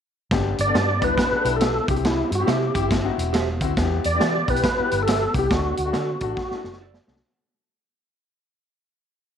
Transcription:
0.31 fingered electric bass G1, upright piano B3 D4 G4, kick, snare, closed hi-hat
0.58 fingered electric bass G1, tonewheel organ D5, closed hi-hat
0.67 upright piano B3 D4 A4
0.74 fingered electric bass G2, clean electric guitar D4 G4 B4, snare, closed hi-hat
1.01 fingered electric bass D2, hollow-body jazz guitar G3 B3, upright piano B3 D4 E4, tonewheel organ B4, kick, closed hi-hat
1.18 hollow-body jazz guitar B3 D4, kick, snare, closed hi-hat
1.30 upright piano B3 D4 G#4, muted fingered electric bass stroke
1.36 upright piano A4
1.45 fingered electric bass B1, hollow-body jazz guitar E4 G4, closed hi-hat
1.56 tonewheel organ A4
1.60 clean electric guitar D4 G4 B4, snare, closed hi-hat
1.88 fingered electric bass C2, upright piano C4 E4 G4, tonewheel organ G4, kick, closed hi-hat
1.96 closed hi-hat
2.05 tonewheel organ E4, snare, closed hi-hat
2.31 fingered electric bass G2, tonewheel organ F#4, closed hi-hat
2.40 upright piano C4 E4 G4
2.47 fingered electric bass C3, hollow-body jazz guitar C4 E4, clean electric guitar G4 C5 E5, tonewheel organ G4, snare, closed hi-hat
2.74 fingered electric bass G1, upright piano C4 E4 G4, hollow-body jazz guitar E4 G4, kick, closed hi-hat
2.91 hollow-body jazz guitar C4 E4, kick, snare, closed hi-hat
3.03 upright piano C4 D#4 F#4
3.10 upright piano E4
3.18 fingered electric bass E1, closed hi-hat
3.33 clean electric guitar G4 C5 E5, snare, closed hi-hat
3.61 fingered electric bass D2, upright piano C4 E4 F#4, kick, closed hi-hat
3.77 fingered electric bass E2, upright piano B3 E4 G4, kick, snare, closed hi-hat
4.04 fingered electric bass E2, tonewheel organ D5, closed hi-hat
4.15 upright piano B3 E4 G4
4.20 fingered electric bass E3, clean electric guitar G4 B4 E5, snare, closed hi-hat
4.48 fingered electric bass B1, upright piano B3 E4 G4, tonewheel organ B4, kick, closed hi-hat
4.56 closed hi-hat
4.64 kick, snare, closed hi-hat
4.77 upright piano B3 E4 F#4, muted fingered electric bass stroke
4.84 upright piano G4
4.91 fingered electric bass G1, closed hi-hat
5.03 tonewheel organ A4
5.07 clean electric guitar G4 B4 E5, snare, closed hi-hat
5.34 fingered electric bass C2, upright piano B3 E4 G4, kick, closed hi-hat
5.39 tonewheel organ G4
5.50 fingered electric bass D2, upright piano A3 D4 F#4, tonewheel organ F#4, kick, snare, closed hi-hat
5.77 fingered electric bass D2, closed hi-hat
5.85 upright piano A3 D4 F#4
5.93 fingered electric bass D3, clean electric guitar F#4 A4 D5, snare, closed hi-hat
6.20 fingered electric bass A1, upright piano A3 D4 F#4, kick, closed hi-hat
6.37 kick, snare
6.51 upright piano A3 D4 E4, muted fingered electric bass stroke, snare
6.58 upright piano F#4
6.64 fingered electric bass F#1, snare
6.73 snare
6.81 clean electric guitar F#4 A4 D5
6.94 snare
7.07 fingered electric bass C2, upright piano A3 D4 F#4, snare
7.16 snare

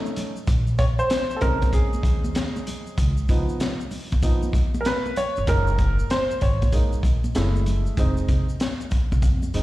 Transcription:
Already playing: upright piano A3 C#4 D#4
0.06 shaker
0.16 closed hi-hat, low conga, shaker
0.36 shaker
0.47 upright bass A#1, kick, closed hi-hat, shaker
0.67 shaker
0.79 upright piano C#5, kick, closed hi-hat, high conga, shaker
0.99 upright piano C5, shaker
1.10 snare, closed hi-hat, shaker
1.30 shaker
1.36 upright piano A4
1.41 upright bass C2, upright piano G#3 C4 C#4 D#4 A#4, kick, closed hi-hat, low conga, shaker
1.62 kick, closed hi-hat, high conga, shaker
1.73 upright piano G#4, kick, closed hi-hat, shaker
1.93 muted upright bass stroke, high conga, shaker
2.03 upright bass D#2, kick, closed hi-hat, low conga, shaker
2.24 high conga, shaker
2.35 snare, closed hi-hat, shaker
2.56 high conga, shaker
2.67 closed hi-hat, low conga, shaker
2.87 shaker
2.98 upright bass C#2, kick, closed hi-hat, shaker
3.17 shaker
3.29 upright bass C#2, upright piano F3 B3 D#4, kick, closed hi-hat, high conga, shaker
3.49 shaker
3.60 snare, closed hi-hat, shaker
3.80 shaker
3.91 open hi-hat, low conga, shaker
4.12 upright bass B1, kick, closed hi-hat, high conga, shaker
4.22 upright piano F3 B3 D#4, kick, closed hi-hat, shaker
4.43 high conga, shaker
4.53 kick, closed hi-hat, low conga, shaker
4.74 high conga, shaker
4.81 upright piano A#4
4.85 upright piano B4, snare, closed hi-hat, shaker
5.06 high conga, shaker
5.16 upright piano C#5, closed hi-hat, low conga, shaker
5.36 upright bass G1, shaker
5.47 upright bass F#1, upright piano G#3 A#3 D#4 A#4, kick, closed hi-hat, shaker
5.67 shaker
5.78 kick, closed hi-hat, high conga, shaker
5.99 shaker
6.10 upright piano C5, snare, closed hi-hat, shaker
6.31 shaker
6.41 upright bass G#1, upright piano C#5, kick, closed hi-hat, low conga, shaker
6.62 kick, closed hi-hat, high conga, shaker
6.72 upright piano G#3 A#3 D#4, kick, closed hi-hat, shaker
6.93 muted upright bass stroke, high conga, shaker
7.03 upright bass A#1, kick, closed hi-hat, low conga, shaker
7.24 high conga, shaker
7.35 upright bass F#1, upright piano G#3 A3 E4, snare, closed hi-hat, shaker
7.56 high conga, shaker
7.66 closed hi-hat, low conga, shaker
7.86 shaker
7.97 upright bass F1, upright piano G#3 C4 D#4, kick, closed hi-hat, shaker
8.17 shaker
8.28 upright bass F1, kick, closed hi-hat, high conga, shaker
8.49 shaker
8.60 snare, closed hi-hat, shaker
8.81 shaker
8.91 kick, closed hi-hat, low conga, shaker
9.12 upright bass C2, kick, high conga, shaker
9.22 upright bass F2, kick, closed hi-hat, shaker
9.43 high conga, shaker
9.54 upright bass F1, upright piano G#3 C4 D#4, closed hi-hat, low conga, shaker

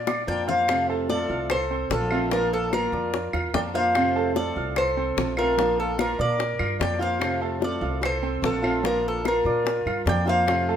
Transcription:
Already playing: upright bass A#2, flute D5, cuban tres F5
0.07 grand piano D4 D5 D6, high bongo, claves
0.27 upright bass F2, steel-string acoustic guitar F3 A#3 D4 F4, flute D5, cuban tres G5
0.47 steel-string acoustic guitar A#3 D4 F4, grand piano F4 F5 F6, flute C5, cuban tres F5, low bongo
0.68 steel-string acoustic guitar C3 F3 A3 C4 F4, high bongo, claves
0.89 grand piano A3 A4 A5
1.09 steel-string acoustic guitar F3 A3 C4 F4, flute A4, cuban tres D5, high bongo
1.29 upright bass C2, grand piano F4 F5 F6
1.50 flute A4, cuban tres C5, muted steel-string acoustic guitar stroke, high bongo, claves
1.71 grand piano C4 C5 C6
1.90 upright bass A#1, steel-string acoustic guitar F3 A3 C4 F4, flute F4, cuban tres A4, high bongo, low bongo
2.11 steel-string acoustic guitar F3 A3 C4 F4, grand piano F4 F5 F6, claves
2.31 steel-string acoustic guitar F3 A#3 D4 F4, grand piano F3 F4 F5, flute F4, cuban tres A#4, high bongo
2.52 flute F4, cuban tres A4
2.71 steel-string acoustic guitar F3 A#3 D4 F4, grand piano A#3 A#4 A#5, flute F4, cuban tres A#4, high bongo, claves
2.92 upright bass F2, grand piano D4 D5 D6, high bongo
3.13 muted steel-string acoustic guitar stroke, high bongo
3.33 upright bass E2, grand piano F4 F5 F6, high bongo, claves
3.54 upright bass F2, steel-string acoustic guitar F3 A#3 D4 F4, grand piano D4 D5 D6, flute D5, cuban tres G5, high bongo, low bongo
3.74 steel-string acoustic guitar A#3 D4 F4, grand piano F4 F5 F6, flute C5, cuban tres F5, high bongo
3.95 steel-string acoustic guitar C3 F3 A3 C4 F4, high bongo, claves
4.16 grand piano A3 A4 A5
4.35 steel-string acoustic guitar F3 A3 C4 F4, flute A4, cuban tres D5, high bongo
4.56 upright bass C2, grand piano F4 F5 F6
4.76 flute A4, cuban tres C5, muted steel-string acoustic guitar stroke, high bongo, claves
4.97 grand piano C4 C5 C6
5.17 upright bass A#1, steel-string acoustic guitar F3 A3 C4 F4, high bongo, low bongo
5.37 steel-string acoustic guitar F3 A3 C4 F4, grand piano F4 F5 F6, flute F4, cuban tres A#4, claves
5.57 steel-string acoustic guitar F3 A#3 D4 F4, grand piano F3 F4 F5, high bongo
5.79 flute F4, cuban tres A4
5.98 steel-string acoustic guitar F3 A#3 D4 F4, grand piano A#3 A#4 A#5, flute F4, cuban tres A#4, high bongo, claves
6.18 upright bass A#2, grand piano D4 D5 D6, flute A#4, cuban tres D5, high bongo
6.39 muted steel-string acoustic guitar stroke, high bongo
6.59 upright bass G2, grand piano F4 F5 F6, high bongo, claves
6.79 upright bass F2, steel-string acoustic guitar F3 A#3 D4 F4, grand piano D4 D5 D6, flute D5, cuban tres G5, high bongo, low bongo
6.99 steel-string acoustic guitar A#3 D4 F4, grand piano F4 F5 F6, flute C5, cuban tres F5, high bongo
7.19 steel-string acoustic guitar C3 F3 A3 C4 F4, high bongo, claves
7.41 grand piano A3 A4 A5
7.60 steel-string acoustic guitar F3 A3 C4 F4, flute A4, cuban tres D5, high bongo
7.81 upright bass C2, grand piano F4 F5 F6
8.01 flute A4, muted steel-string acoustic guitar stroke, high bongo, claves
8.05 cuban tres C5
8.23 grand piano C4 C5 C6
8.42 upright bass A#1, steel-string acoustic guitar F3 A3 C4 F4, flute F4, cuban tres A4, high bongo, low bongo
8.62 steel-string acoustic guitar F3 A3 C4 F4, grand piano F4 F5 F6, claves
8.83 steel-string acoustic guitar F3 A#3 D4 F4, grand piano F3 F4 F5, flute F4, cuban tres A#4, high bongo
9.05 flute F4, cuban tres A4
9.24 steel-string acoustic guitar F3 A#3 D4 F4, grand piano A#3 A#4 A#5, flute F4, high bongo, claves
9.28 cuban tres A#4
9.45 upright bass A#2, grand piano D4 D5 D6, high bongo
9.65 muted steel-string acoustic guitar stroke, high bongo
9.86 upright bass G2, grand piano F4 F5 F6, high bongo, claves
10.05 upright bass F2, steel-string acoustic guitar F3 A#3 D4 F4, grand piano D4 D5 D6, flute D5, high bongo, low bongo
10.09 cuban tres G5
10.25 steel-string acoustic guitar A#3 D4 F4, grand piano F4 F5 F6, flute C5, cuban tres F5, high bongo
10.46 steel-string acoustic guitar C3 F3 A3 C4 F4, high bongo, claves
10.69 grand piano A3 A4 A5

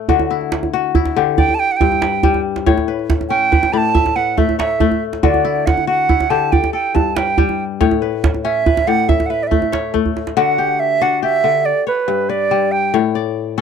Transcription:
Already playing: kora A2 A3 C#5
0.09 kora D3 F#4, djembe bass
0.19 djembe tone
0.31 kora E4
0.41 djembe slap
0.52 djembe slap
0.63 djembe slap, djembe tone
0.74 kora F#4
0.95 kora E4, djembe bass
1.06 djembe slap, djembe tone
1.16 kora D3 G4
1.38 kora D5, flute G5, djembe bass
1.49 djembe tone
1.55 flute A5
1.59 flute G5
1.72 flute F#5
1.76 flute G5
1.81 kora G2, djembe bass
1.92 djembe tone
2.02 kora B4, djembe slap
2.23 kora G3, djembe bass
2.34 djembe tone
2.56 djembe slap
2.66 kora A2 C#5, djembe bass
2.78 djembe tone
2.88 kora B4
2.99 djembe slap
3.10 djembe slap, djembe bass
3.21 djembe slap, djembe tone
3.29 kora C#4, flute G5
3.52 kora B4, djembe bass
3.63 djembe slap, djembe tone
3.73 kora A2 D5, flute B5
3.77 flute A5
3.95 kora E5, djembe bass
4.06 djembe slap, djembe tone
4.16 kora B4, flute F#5
4.37 kora A3, flute E5, djembe bass
4.49 djembe tone
4.59 kora C#5, flute E5, djembe slap
4.80 kora A3, djembe bass
4.92 djembe tone
5.13 djembe slap
5.23 kora D3 F#4, flute D5, djembe bass
5.34 djembe tone
5.45 kora E4
5.56 djembe slap
5.66 flute F#5, djembe slap, djembe bass
5.77 djembe slap, djembe tone
5.87 kora F#4, flute F#5
6.09 kora E4, djembe bass
6.20 djembe slap, djembe tone
6.30 kora D3 G4, flute A5
6.52 kora D5, flute G5, djembe bass
6.64 djembe slap, djembe tone
6.73 kora A4, flute G5
6.95 kora G2, flute A5, djembe bass
7.16 kora B4, flute G5, djembe slap
7.38 kora G3, djembe bass
7.49 djembe tone
7.81 kora A2 C#5, djembe slap, djembe bass
7.91 djembe tone
8.02 kora B4
8.13 djembe slap
8.24 djembe slap, djembe bass
8.34 djembe slap, djembe tone
8.44 kora C#4, flute E5
8.66 kora B4, djembe bass
8.77 djembe slap, djembe tone
8.87 kora A2 D5, flute F#5
9.09 kora E5, flute E5, djembe bass
9.20 djembe slap, djembe tone
9.26 kora B4, flute F#5
9.30 flute E5
9.43 flute D5
9.47 kora A3, flute E5
9.52 djembe bass
9.62 djembe tone
9.72 kora C#5, djembe slap
9.94 kora A3, djembe bass
10.06 djembe bass
10.16 djembe slap
10.27 djembe slap
10.37 kora D3 F#4, flute F#5
10.58 kora G4
10.80 flute E5
11.01 kora D4 F#4, flute F#5
11.23 kora G4, flute E5
11.44 kora D3
11.66 flute D5
11.87 flute B4, kora C#5
12.08 kora G2
12.29 kora B4, flute D5
12.51 kora G3
12.72 flute G5
12.94 kora A2 C#5
13.15 kora D5
13.58 kora C#4 A4

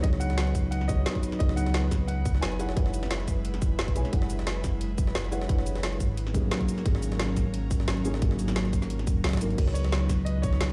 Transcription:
Already playing: analog synth pad F#3 D#4 B4, felt piano B3 D#4 F#4 G#4 C#5
0.02 sub bass C#2, felt piano B3 D#4 F#4 G#4 C#5, grand piano D#5, kick, closed hi-hat
0.13 snare
0.20 grand piano F#5, closed hi-hat, cabasa
0.30 snare, closed hi-hat
0.38 snare, closed hi-hat
0.47 closed hi-hat
0.55 sub bass C#2, kick, closed hi-hat, cabasa
0.71 grand piano F#5, closed hi-hat
0.81 snare
0.88 felt piano B3 D#4 F#4 G#4 C#5, grand piano D#5, kick, closed hi-hat, cabasa
1.06 snare, closed hi-hat
1.15 kick, closed hi-hat
1.23 closed hi-hat, cabasa
1.32 snare, closed hi-hat
1.39 sub bass C#2, felt piano B3 D#4 F#4 G#4 C#5, grand piano D#5, kick, closed hi-hat
1.49 snare
1.56 grand piano F#5, closed hi-hat, cabasa
1.66 snare, closed hi-hat
1.74 snare, closed hi-hat
1.91 sub bass C#2, kick, snare, closed hi-hat, cabasa
2.07 grand piano F#5, closed hi-hat
2.25 kick, closed hi-hat, cabasa
2.35 snare
2.41 sub bass F#1, grand piano G#5, snare, closed hi-hat
2.52 closed hi-hat
2.59 analog synth pad G#3 E4, felt piano E4 G#4 B4 C#5 F#5, closed hi-hat, cabasa
2.69 snare
2.75 sub bass F#1, felt piano E4 G#4 B4 C#5 F#5, kick, closed hi-hat
2.86 snare
2.94 closed hi-hat, cabasa
3.03 snare, closed hi-hat
3.11 snare, closed hi-hat
3.20 closed hi-hat
3.28 sub bass F#1, kick, closed hi-hat, cabasa
3.45 closed hi-hat
3.54 snare, closed hi-hat
3.62 kick, closed hi-hat, cabasa
3.79 sub bass F#1, snare, closed hi-hat
3.88 kick, closed hi-hat
3.95 sub bass B1, felt piano E4 G#4 B4 C#5 G#5, closed hi-hat, cabasa
4.05 snare, closed hi-hat
4.11 sub bass F#1, felt piano E4 G#4 B4 F#5, kick, closed hi-hat
4.22 snare
4.30 closed hi-hat, cabasa
4.39 snare, closed hi-hat
4.47 snare, closed hi-hat
4.64 sub bass F#1, kick, snare, closed hi-hat, cabasa
4.81 closed hi-hat
4.98 kick, closed hi-hat, cabasa
5.07 snare
5.15 sub bass F#1, snare, closed hi-hat
5.24 closed hi-hat
5.32 felt piano E4 G#4 B4 C#5 F#5, closed hi-hat, cabasa
5.42 snare
5.48 sub bass F#1, felt piano E4 G#4 B4 C#5 F#5, kick, closed hi-hat
5.59 snare
5.66 closed hi-hat, cabasa
5.75 snare, closed hi-hat
5.83 snare, closed hi-hat
5.92 closed hi-hat
6.00 sub bass G#1, kick, closed hi-hat, cabasa
6.17 analog synth pad F#3 C#4 A#4, closed hi-hat
6.27 snare
6.33 felt piano F#3 A#3 C#4 D#4 G#4, kick, closed hi-hat, cabasa
6.51 snare, closed hi-hat
6.61 kick, closed hi-hat
6.69 closed hi-hat, cabasa
6.78 snare, closed hi-hat
6.84 sub bass G#1, felt piano F#3 A#3 C#4 D#4 G#4, kick, closed hi-hat
6.95 snare
7.03 closed hi-hat, cabasa
7.12 snare, closed hi-hat
7.20 snare, closed hi-hat
7.37 sub bass G#1, kick, snare, closed hi-hat, cabasa
7.54 closed hi-hat
7.71 kick, closed hi-hat, cabasa
7.80 snare
7.88 sub bass G#1, snare, closed hi-hat
7.97 closed hi-hat
8.04 felt piano F#3 A#3 C#4 D#4 G#4, closed hi-hat, cabasa
8.14 snare
8.21 sub bass G#1, felt piano F#3 A#3 C#4 D#4 G#4, kick, closed hi-hat
8.31 snare
8.39 closed hi-hat, cabasa
8.48 snare, closed hi-hat, cabasa
8.56 snare, closed hi-hat
8.65 closed hi-hat
8.73 sub bass G#1, kick, closed hi-hat, cabasa
8.82 snare, cabasa
8.90 closed hi-hat
8.99 snare, closed hi-hat
9.07 sub bass D#1, kick, closed hi-hat, cabasa
9.24 sub bass C#2, snare, closed hi-hat
9.29 snare, closed hi-hat
9.33 sub bass G#1, kick, snare, closed hi-hat
9.37 felt piano F#3 A#3, snare, closed hi-hat
9.41 felt piano C#4 D#4 A#4, closed hi-hat, cabasa
9.50 closed hi-hat
9.57 sub bass C#2, felt piano B3 D#4 F#4 G#4 C#5, analog synth pad D#4 B4, kick, closed hi-hat, crash
9.68 snare
9.74 grand piano C#5, closed hi-hat, cabasa
9.84 snare, closed hi-hat
9.92 snare, closed hi-hat
10.09 sub bass C#2, kick, snare, closed hi-hat, cabasa
10.25 grand piano D#5, closed hi-hat
10.42 grand piano C#5, kick, closed hi-hat, cabasa
10.53 snare
10.61 sub bass C#2, snare, closed hi-hat

